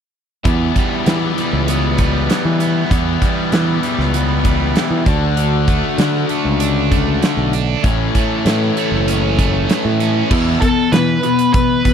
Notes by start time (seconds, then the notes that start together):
0.44 E2 E3 G3 B3 E4, kick, closed hi-hat
0.76 G3, kick, closed hi-hat
1.06 E3, snare, closed hi-hat
1.38 G3, closed hi-hat
1.53 C#2
1.68 B3, closed hi-hat
1.98 G3, kick, closed hi-hat
2.30 E3, snare, closed hi-hat
2.45 E3
2.60 B3, closed hi-hat
2.90 E2 E3 G3 B3 E4, kick, closed hi-hat
3.22 G3, kick, closed hi-hat
3.52 E3, snare, closed hi-hat
3.83 G3, closed hi-hat
3.98 C#2, snare
4.14 B3, closed hi-hat
4.45 G3, kick, closed hi-hat
4.76 E3, snare, closed hi-hat
4.90 E3
5.06 D2 D3 A3 D4 F#4, kick, closed hi-hat
5.37 D3, closed hi-hat
5.68 A3, kick, closed hi-hat
5.98 D3, snare, closed hi-hat
6.29 A3, closed hi-hat
6.45 C#2
6.60 D4, closed hi-hat
6.91 A3, kick, closed hi-hat
7.22 D3, snare, closed hi-hat
7.37 B1
7.53 D4, closed hi-hat
7.83 A1 A2 E3 A3 C#4 E4, kick, closed hi-hat
8.15 A3, kick, closed hi-hat
8.45 A2 E3, snare, closed hi-hat
8.77 A3, closed hi-hat
8.92 F#1
9.08 C#4, closed hi-hat
9.39 A3, kick, closed hi-hat
9.69 E3, snare, closed hi-hat
9.85 A2
10.00 C#4, closed hi-hat
10.30 E2 B2 E3 B3 E4, kick, crash
10.61 E2 B2 E3 B3 A4, kick, closed hi-hat
10.92 E2 B2 E3 B3 B4, snare, closed hi-hat
11.23 E2 B2 E3 B3, closed hi-hat
11.39 closed hi-hat
11.53 E2 B2 E3 B3 B4, kick, closed hi-hat
11.84 E2 B2 E3 B3, kick, closed hi-hat